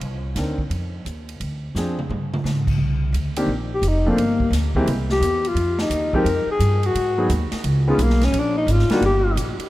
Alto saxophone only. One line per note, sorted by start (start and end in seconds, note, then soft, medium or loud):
3.74 3.90 G4 medium
3.88 4.10 D#4 medium
4.09 4.54 A#3 medium
5.12 5.49 G4 medium
5.48 5.80 F4 medium
5.81 6.19 D#4 medium
6.17 6.50 A#4 medium
6.51 6.87 G#4 medium
6.86 7.31 F#4 medium
7.90 8.05 G#3 medium
8.03 8.26 A#3 medium
8.24 8.40 C#4 medium
8.39 8.57 D4 medium
8.57 8.73 D#4 medium
8.71 8.94 F4 medium
8.93 9.04 F#4 medium
9.05 9.36 G4 medium